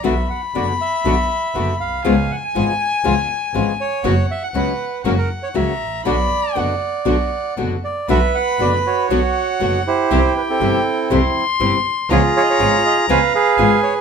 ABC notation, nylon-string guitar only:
X:1
M:4/4
L:1/8
Q:1/4=120
K:Bm
V:1 name="Nylon-string guitar"
[B,,D,B,DF] z [B,,D,B,DF] z [B,,D,B,DF] z [B,,D,B,DF] z | [C,^E,^G,B,^E] z [C,E,G,B,E] z [C,E,G,B,E] z [C,E,G,B,E] z | [B,,F,B,CF] z [B,,F,B,CF] z [C,F,^A,CF] z [C,F,A,CF] z | [B,,D,B,DF] z [B,,D,B,DF] z [B,,D,B,DF] z [B,,D,B,DF] z |
[B,,D,B,DF] z [B,,D,B,DF] z [B,,D,B,DF] z [B,,D,B,DF] z | [=C,E,G,=CE] z [C,E,G,CE] z [C,E,G,CE] z [C,E,G,CE] z | [C,^E,^G,B,^E] z [C,E,G,B,E] z [C,E,G,B,E] z [C,E,G,B,E] z |]